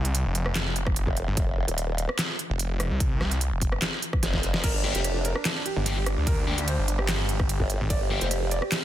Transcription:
0.00 0.24 C2 loud
0.05 closed hi-hat medium
0.15 closed hi-hat medium
0.25 1.05 F1 medium
0.35 closed hi-hat medium
0.46 cross-stick medium
0.55 snare loud
0.55 clap medium
0.55 closed hi-hat medium
0.76 closed hi-hat medium
0.87 kick loud
0.87 cross-stick medium
0.96 closed hi-hat medium
1.07 1.26 F1 loud
1.07 kick medium
1.17 closed hi-hat medium
1.27 1.36 G1 loud
1.37 1.66 F1 medium
1.37 kick loud
1.37 closed hi-hat medium
1.68 2.07 D#1 loud
1.68 closed hi-hat medium
1.78 closed hi-hat medium
1.98 closed hi-hat medium
2.09 cross-stick medium
2.19 snare loud
2.19 clap medium
2.19 closed hi-hat medium
2.39 closed hi-hat medium
2.50 2.89 F1 medium
2.59 closed hi-hat medium
2.80 cross-stick medium
2.80 closed hi-hat medium
2.91 3.09 C2 loud
3.00 kick loud
3.00 closed hi-hat medium
3.11 3.50 C2 loud
3.21 cross-stick medium
3.21 snare soft
3.31 closed hi-hat medium
3.41 closed hi-hat medium
3.52 3.80 F1 loud
3.62 kick medium
3.62 closed hi-hat medium
3.72 cross-stick medium
3.82 snare loud
3.82 clap medium
3.82 closed hi-hat medium
4.02 closed hi-hat medium
4.13 kick loud
4.13 cross-stick medium
4.23 4.62 F1 medium
4.23 snare medium
4.23 closed hi-hat medium
4.34 kick medium
4.34 snare medium
4.43 closed hi-hat medium
4.54 snare medium
4.64 4.93 G1 medium
4.64 4.70 A#4 loud
4.64 kick loud
4.64 closed hi-hat medium
4.64 crash medium
4.64 ride medium
4.74 4.80 D4 medium
4.84 5.00 A#3 medium
4.84 4.91 D4 medium
4.84 5.00 D4 medium
4.84 5.00 G4 medium
4.95 5.34 F1 loud
4.95 5.01 G4 medium
4.95 closed hi-hat medium
5.04 5.11 D4 medium
5.04 closed hi-hat medium
5.04 ride soft
5.15 5.21 D4 medium
5.25 5.32 A#4 medium
5.25 closed hi-hat medium
5.36 5.42 D4 medium
5.36 cross-stick medium
5.45 5.52 D4 medium
5.45 snare loud
5.45 clap loud
5.45 closed hi-hat medium
5.45 ride medium
5.56 5.62 D4 medium
5.66 5.72 G4 loud
5.66 closed hi-hat medium
5.76 6.15 G1 loud
5.76 5.82 D4 medium
5.86 5.96 A#3 medium
5.86 5.93 D4 medium
5.86 5.96 D4 medium
5.86 5.96 G4 medium
5.86 closed hi-hat medium
5.86 ride soft
5.97 6.03 G4 medium
6.06 6.13 D4 medium
6.06 cross-stick medium
6.06 closed hi-hat medium
6.17 6.36 D2 loud
6.17 6.23 D4 medium
6.27 6.34 A#4 loud
6.27 kick loud
6.27 closed hi-hat medium
6.27 ride medium
6.38 6.77 D2 loud
6.38 6.44 D4 medium
6.47 6.57 A#3 medium
6.47 6.54 D4 medium
6.47 6.57 D4 medium
6.47 6.57 G4 medium
6.58 6.64 D4 medium
6.58 closed hi-hat medium
6.68 6.74 C5 loud
6.68 closed hi-hat medium
6.68 ride soft
6.78 7.58 G1 medium
6.78 6.84 D4 medium
6.88 6.95 D4 medium
6.88 closed hi-hat medium
6.99 7.82 G4 loud
6.99 cross-stick medium
7.08 snare loud
7.08 clap loud
7.08 closed hi-hat medium
7.08 ride medium
7.29 closed hi-hat medium
7.40 kick loud
7.40 cross-stick medium
7.49 closed hi-hat medium
7.49 ride soft
7.60 7.79 G1 loud
7.60 kick medium
7.70 closed hi-hat medium
7.80 7.89 G#1 loud
7.90 8.20 G1 medium
7.90 7.97 D5 loud
7.90 kick loud
7.90 closed hi-hat medium
7.90 ride medium
8.01 8.07 G4 medium
8.10 8.26 A#3 medium
8.10 8.26 D4 medium
8.10 8.26 G4 medium
8.10 8.17 G4 medium
8.21 8.60 F1 loud
8.21 8.27 C5 medium
8.21 closed hi-hat medium
8.31 8.38 G4 medium
8.31 closed hi-hat medium
8.31 ride soft
8.42 8.48 G4 medium
8.51 8.58 D5 medium
8.51 closed hi-hat medium
8.62 8.68 G4 medium
8.62 cross-stick medium
8.72 8.78 G4 medium
8.72 snare loud
8.72 clap loud
8.72 closed hi-hat medium
8.72 ride medium

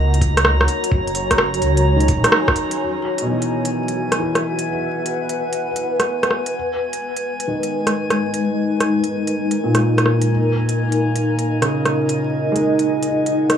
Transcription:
0.00 0.67 C#2 medium
0.00 2.81 A#3 medium
0.00 3.71 F#4 medium
0.00 0.57 A#4 medium
0.00 4.33 C#5 medium
0.00 0.17 D#5 medium
0.00 0.57 F#5 medium
0.00 2.81 A#5 medium
0.00 4.17 A#5 medium
0.14 closed hi-hat soft
0.21 kick loud
0.21 open hi-hat medium
0.37 7.50 G#5 medium
0.37 cross-stick medium
0.37 closed hi-hat medium
0.45 cross-stick medium
0.61 cross-stick medium
0.68 open hi-hat medium
0.84 closed hi-hat medium
0.92 1.61 F#1 loud
0.92 kick loud
1.07 closed hi-hat soft
1.15 open hi-hat medium
1.31 kick medium
1.31 cross-stick medium
1.31 closed hi-hat medium
1.38 cross-stick loud
1.54 closed hi-hat soft
1.62 2.10 C#2 medium
1.62 open hi-hat medium
1.77 closed hi-hat medium
1.96 2.98 D#3 medium
2.00 closed hi-hat soft
2.08 2.23 A#1 loud
2.08 kick loud
2.08 open hi-hat medium
2.24 cross-stick medium
2.24 closed hi-hat medium
2.32 cross-stick loud
2.48 kick loud
2.48 cross-stick medium
2.56 open hi-hat medium
2.71 closed hi-hat medium
2.79 6.54 E5 medium
2.79 13.58 G#5 medium
3.18 4.65 B2 medium
3.18 closed hi-hat medium
3.26 4.67 D#3 soft
3.26 10.30 B4 medium
3.31 4.18 E3 soft
3.42 closed hi-hat soft
3.65 closed hi-hat medium
3.71 7.16 F#5 medium
3.88 closed hi-hat soft
4.12 cross-stick medium
4.12 closed hi-hat medium
4.19 5.66 E3 medium
4.35 cross-stick medium
4.35 closed hi-hat soft
4.59 closed hi-hat medium
5.06 closed hi-hat medium
5.29 closed hi-hat soft
5.53 closed hi-hat medium
5.76 closed hi-hat soft
6.00 cross-stick medium
6.00 closed hi-hat soft
6.23 cross-stick medium
6.23 closed hi-hat soft
6.31 cross-stick medium
6.46 closed hi-hat medium
6.55 10.29 G#3 medium
6.93 closed hi-hat soft
7.17 closed hi-hat soft
7.23 13.58 D#4 medium
7.40 closed hi-hat soft
7.47 8.95 D#3 soft
7.63 closed hi-hat soft
7.87 cross-stick medium
7.87 closed hi-hat medium
7.93 13.58 A#4 medium
8.10 cross-stick medium
8.10 closed hi-hat soft
8.34 closed hi-hat soft
8.80 cross-stick medium
8.80 closed hi-hat soft
9.04 closed hi-hat soft
9.27 closed hi-hat soft
9.51 closed hi-hat soft
9.64 10.49 A#2 soft
9.75 cross-stick medium
9.75 closed hi-hat soft
9.98 cross-stick medium
9.98 closed hi-hat soft
10.06 cross-stick medium
10.21 closed hi-hat soft
10.68 13.58 D#5 medium
10.68 closed hi-hat soft
10.92 closed hi-hat soft
11.16 closed hi-hat soft
11.39 closed hi-hat soft
11.61 13.04 C#3 medium
11.61 cross-stick medium
11.61 closed hi-hat soft
11.85 cross-stick medium
11.85 closed hi-hat soft
12.00 13.58 F#5 medium
12.09 closed hi-hat soft
12.52 13.58 G#3 medium
12.52 closed hi-hat soft
12.79 closed hi-hat soft
13.03 closed hi-hat soft
13.26 closed hi-hat soft
13.50 cross-stick medium
13.50 closed hi-hat soft

